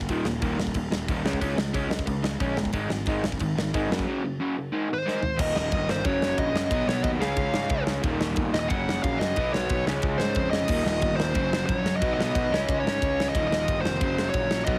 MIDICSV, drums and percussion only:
0, 0, Header, 1, 2, 480
1, 0, Start_track
1, 0, Tempo, 331492
1, 119, Time_signature, 4, 2, 24, 8
1, 21409, End_track
2, 0, Start_track
2, 0, Title_t, "Drums"
2, 13, Note_on_c, 9, 36, 77
2, 123, Note_on_c, 9, 49, 61
2, 131, Note_off_c, 9, 36, 0
2, 131, Note_on_c, 9, 36, 96
2, 268, Note_off_c, 9, 49, 0
2, 275, Note_off_c, 9, 36, 0
2, 365, Note_on_c, 9, 38, 105
2, 509, Note_off_c, 9, 38, 0
2, 604, Note_on_c, 9, 49, 56
2, 609, Note_on_c, 9, 36, 108
2, 748, Note_off_c, 9, 49, 0
2, 754, Note_off_c, 9, 36, 0
2, 862, Note_on_c, 9, 38, 114
2, 967, Note_on_c, 9, 36, 71
2, 1007, Note_off_c, 9, 38, 0
2, 1074, Note_on_c, 9, 49, 66
2, 1084, Note_off_c, 9, 36, 0
2, 1084, Note_on_c, 9, 36, 99
2, 1219, Note_off_c, 9, 49, 0
2, 1229, Note_off_c, 9, 36, 0
2, 1335, Note_on_c, 9, 38, 119
2, 1480, Note_off_c, 9, 38, 0
2, 1570, Note_on_c, 9, 36, 107
2, 1571, Note_on_c, 9, 49, 56
2, 1715, Note_off_c, 9, 36, 0
2, 1716, Note_off_c, 9, 49, 0
2, 1819, Note_on_c, 9, 38, 114
2, 1929, Note_on_c, 9, 36, 81
2, 1964, Note_off_c, 9, 38, 0
2, 2048, Note_off_c, 9, 36, 0
2, 2048, Note_on_c, 9, 36, 93
2, 2051, Note_on_c, 9, 49, 63
2, 2193, Note_off_c, 9, 36, 0
2, 2196, Note_off_c, 9, 49, 0
2, 2291, Note_on_c, 9, 38, 118
2, 2436, Note_off_c, 9, 38, 0
2, 2524, Note_on_c, 9, 36, 100
2, 2526, Note_on_c, 9, 49, 64
2, 2669, Note_off_c, 9, 36, 0
2, 2671, Note_off_c, 9, 49, 0
2, 2769, Note_on_c, 9, 38, 112
2, 2879, Note_on_c, 9, 36, 88
2, 2914, Note_off_c, 9, 38, 0
2, 2995, Note_on_c, 9, 49, 58
2, 3000, Note_off_c, 9, 36, 0
2, 3000, Note_on_c, 9, 36, 97
2, 3140, Note_off_c, 9, 49, 0
2, 3145, Note_off_c, 9, 36, 0
2, 3244, Note_on_c, 9, 38, 121
2, 3389, Note_off_c, 9, 38, 0
2, 3475, Note_on_c, 9, 49, 54
2, 3480, Note_on_c, 9, 36, 100
2, 3620, Note_off_c, 9, 49, 0
2, 3625, Note_off_c, 9, 36, 0
2, 3723, Note_on_c, 9, 38, 113
2, 3839, Note_on_c, 9, 36, 82
2, 3868, Note_off_c, 9, 38, 0
2, 3946, Note_on_c, 9, 49, 61
2, 3961, Note_off_c, 9, 36, 0
2, 3961, Note_on_c, 9, 36, 100
2, 4090, Note_off_c, 9, 49, 0
2, 4106, Note_off_c, 9, 36, 0
2, 4203, Note_on_c, 9, 38, 101
2, 4348, Note_off_c, 9, 38, 0
2, 4424, Note_on_c, 9, 49, 61
2, 4443, Note_on_c, 9, 36, 108
2, 4569, Note_off_c, 9, 49, 0
2, 4587, Note_off_c, 9, 36, 0
2, 4689, Note_on_c, 9, 38, 113
2, 4810, Note_on_c, 9, 36, 78
2, 4834, Note_off_c, 9, 38, 0
2, 4913, Note_on_c, 9, 49, 60
2, 4930, Note_off_c, 9, 36, 0
2, 4930, Note_on_c, 9, 36, 95
2, 5058, Note_off_c, 9, 49, 0
2, 5075, Note_off_c, 9, 36, 0
2, 5190, Note_on_c, 9, 38, 109
2, 5335, Note_off_c, 9, 38, 0
2, 5416, Note_on_c, 9, 49, 60
2, 5419, Note_on_c, 9, 36, 102
2, 5561, Note_off_c, 9, 49, 0
2, 5564, Note_off_c, 9, 36, 0
2, 5678, Note_on_c, 9, 38, 125
2, 5778, Note_on_c, 9, 36, 81
2, 5823, Note_off_c, 9, 38, 0
2, 5923, Note_off_c, 9, 36, 0
2, 7355, Note_on_c, 9, 38, 56
2, 7499, Note_off_c, 9, 38, 0
2, 7567, Note_on_c, 9, 43, 81
2, 7711, Note_off_c, 9, 43, 0
2, 7804, Note_on_c, 9, 57, 127
2, 7807, Note_on_c, 9, 36, 122
2, 7949, Note_off_c, 9, 57, 0
2, 7952, Note_off_c, 9, 36, 0
2, 8052, Note_on_c, 9, 38, 125
2, 8196, Note_off_c, 9, 38, 0
2, 8277, Note_on_c, 9, 51, 81
2, 8285, Note_on_c, 9, 36, 121
2, 8422, Note_off_c, 9, 51, 0
2, 8429, Note_off_c, 9, 36, 0
2, 8532, Note_on_c, 9, 38, 127
2, 8677, Note_off_c, 9, 38, 0
2, 8753, Note_on_c, 9, 51, 86
2, 8759, Note_on_c, 9, 36, 125
2, 8898, Note_off_c, 9, 51, 0
2, 8904, Note_off_c, 9, 36, 0
2, 9011, Note_on_c, 9, 38, 125
2, 9156, Note_off_c, 9, 38, 0
2, 9237, Note_on_c, 9, 51, 80
2, 9238, Note_on_c, 9, 36, 112
2, 9382, Note_off_c, 9, 51, 0
2, 9383, Note_off_c, 9, 36, 0
2, 9493, Note_on_c, 9, 38, 119
2, 9637, Note_off_c, 9, 38, 0
2, 9714, Note_on_c, 9, 36, 121
2, 9722, Note_on_c, 9, 51, 92
2, 9859, Note_off_c, 9, 36, 0
2, 9867, Note_off_c, 9, 51, 0
2, 9975, Note_on_c, 9, 38, 110
2, 10120, Note_off_c, 9, 38, 0
2, 10193, Note_on_c, 9, 51, 78
2, 10194, Note_on_c, 9, 36, 114
2, 10338, Note_off_c, 9, 36, 0
2, 10338, Note_off_c, 9, 51, 0
2, 10450, Note_on_c, 9, 38, 119
2, 10595, Note_off_c, 9, 38, 0
2, 10665, Note_on_c, 9, 51, 89
2, 10669, Note_on_c, 9, 36, 119
2, 10810, Note_off_c, 9, 51, 0
2, 10814, Note_off_c, 9, 36, 0
2, 10914, Note_on_c, 9, 38, 127
2, 11059, Note_off_c, 9, 38, 0
2, 11141, Note_on_c, 9, 51, 69
2, 11151, Note_on_c, 9, 36, 119
2, 11285, Note_off_c, 9, 51, 0
2, 11296, Note_off_c, 9, 36, 0
2, 11395, Note_on_c, 9, 38, 127
2, 11540, Note_off_c, 9, 38, 0
2, 11635, Note_on_c, 9, 51, 84
2, 11638, Note_on_c, 9, 36, 118
2, 11779, Note_off_c, 9, 51, 0
2, 11783, Note_off_c, 9, 36, 0
2, 11884, Note_on_c, 9, 38, 112
2, 12029, Note_off_c, 9, 38, 0
2, 12104, Note_on_c, 9, 51, 79
2, 12119, Note_on_c, 9, 36, 117
2, 12248, Note_off_c, 9, 51, 0
2, 12264, Note_off_c, 9, 36, 0
2, 12369, Note_on_c, 9, 38, 127
2, 12514, Note_off_c, 9, 38, 0
2, 12596, Note_on_c, 9, 51, 82
2, 12605, Note_on_c, 9, 36, 112
2, 12740, Note_off_c, 9, 51, 0
2, 12750, Note_off_c, 9, 36, 0
2, 12872, Note_on_c, 9, 38, 123
2, 13017, Note_off_c, 9, 38, 0
2, 13088, Note_on_c, 9, 36, 115
2, 13089, Note_on_c, 9, 51, 89
2, 13233, Note_off_c, 9, 36, 0
2, 13234, Note_off_c, 9, 51, 0
2, 13339, Note_on_c, 9, 38, 123
2, 13484, Note_off_c, 9, 38, 0
2, 13554, Note_on_c, 9, 51, 82
2, 13568, Note_on_c, 9, 36, 114
2, 13699, Note_off_c, 9, 51, 0
2, 13713, Note_off_c, 9, 36, 0
2, 13818, Note_on_c, 9, 38, 126
2, 13963, Note_off_c, 9, 38, 0
2, 14036, Note_on_c, 9, 51, 85
2, 14046, Note_on_c, 9, 36, 119
2, 14181, Note_off_c, 9, 51, 0
2, 14191, Note_off_c, 9, 36, 0
2, 14296, Note_on_c, 9, 38, 118
2, 14441, Note_off_c, 9, 38, 0
2, 14507, Note_on_c, 9, 51, 77
2, 14524, Note_on_c, 9, 36, 121
2, 14652, Note_off_c, 9, 51, 0
2, 14669, Note_off_c, 9, 36, 0
2, 14766, Note_on_c, 9, 38, 124
2, 14910, Note_off_c, 9, 38, 0
2, 14981, Note_on_c, 9, 51, 76
2, 15000, Note_on_c, 9, 36, 112
2, 15126, Note_off_c, 9, 51, 0
2, 15145, Note_off_c, 9, 36, 0
2, 15250, Note_on_c, 9, 38, 117
2, 15394, Note_off_c, 9, 38, 0
2, 15463, Note_on_c, 9, 49, 111
2, 15482, Note_on_c, 9, 36, 125
2, 15608, Note_off_c, 9, 49, 0
2, 15626, Note_off_c, 9, 36, 0
2, 15731, Note_on_c, 9, 38, 120
2, 15876, Note_off_c, 9, 38, 0
2, 15950, Note_on_c, 9, 51, 80
2, 15961, Note_on_c, 9, 36, 121
2, 16095, Note_off_c, 9, 51, 0
2, 16106, Note_off_c, 9, 36, 0
2, 16214, Note_on_c, 9, 38, 127
2, 16359, Note_off_c, 9, 38, 0
2, 16432, Note_on_c, 9, 51, 86
2, 16440, Note_on_c, 9, 36, 117
2, 16577, Note_off_c, 9, 51, 0
2, 16585, Note_off_c, 9, 36, 0
2, 16698, Note_on_c, 9, 38, 113
2, 16843, Note_off_c, 9, 38, 0
2, 16923, Note_on_c, 9, 51, 80
2, 16925, Note_on_c, 9, 36, 123
2, 17068, Note_off_c, 9, 51, 0
2, 17070, Note_off_c, 9, 36, 0
2, 17172, Note_on_c, 9, 38, 115
2, 17317, Note_off_c, 9, 38, 0
2, 17401, Note_on_c, 9, 51, 92
2, 17403, Note_on_c, 9, 36, 127
2, 17546, Note_off_c, 9, 51, 0
2, 17548, Note_off_c, 9, 36, 0
2, 17673, Note_on_c, 9, 38, 118
2, 17818, Note_off_c, 9, 38, 0
2, 17887, Note_on_c, 9, 36, 126
2, 17892, Note_on_c, 9, 51, 86
2, 18031, Note_off_c, 9, 36, 0
2, 18037, Note_off_c, 9, 51, 0
2, 18158, Note_on_c, 9, 38, 126
2, 18303, Note_off_c, 9, 38, 0
2, 18369, Note_on_c, 9, 36, 127
2, 18381, Note_on_c, 9, 51, 86
2, 18514, Note_off_c, 9, 36, 0
2, 18526, Note_off_c, 9, 51, 0
2, 18639, Note_on_c, 9, 38, 122
2, 18784, Note_off_c, 9, 38, 0
2, 18854, Note_on_c, 9, 36, 116
2, 18863, Note_on_c, 9, 51, 75
2, 18999, Note_off_c, 9, 36, 0
2, 19008, Note_off_c, 9, 51, 0
2, 19116, Note_on_c, 9, 38, 116
2, 19260, Note_off_c, 9, 38, 0
2, 19328, Note_on_c, 9, 36, 115
2, 19332, Note_on_c, 9, 51, 93
2, 19473, Note_off_c, 9, 36, 0
2, 19477, Note_off_c, 9, 51, 0
2, 19583, Note_on_c, 9, 38, 121
2, 19728, Note_off_c, 9, 38, 0
2, 19811, Note_on_c, 9, 36, 112
2, 19814, Note_on_c, 9, 51, 82
2, 19956, Note_off_c, 9, 36, 0
2, 19959, Note_off_c, 9, 51, 0
2, 20060, Note_on_c, 9, 38, 127
2, 20205, Note_off_c, 9, 38, 0
2, 20284, Note_on_c, 9, 51, 89
2, 20288, Note_on_c, 9, 36, 121
2, 20429, Note_off_c, 9, 51, 0
2, 20433, Note_off_c, 9, 36, 0
2, 20539, Note_on_c, 9, 38, 122
2, 20684, Note_off_c, 9, 38, 0
2, 20757, Note_on_c, 9, 51, 79
2, 20765, Note_on_c, 9, 36, 112
2, 20902, Note_off_c, 9, 51, 0
2, 20910, Note_off_c, 9, 36, 0
2, 21007, Note_on_c, 9, 38, 119
2, 21152, Note_off_c, 9, 38, 0
2, 21235, Note_on_c, 9, 51, 88
2, 21248, Note_on_c, 9, 36, 124
2, 21380, Note_off_c, 9, 51, 0
2, 21393, Note_off_c, 9, 36, 0
2, 21409, End_track
0, 0, End_of_file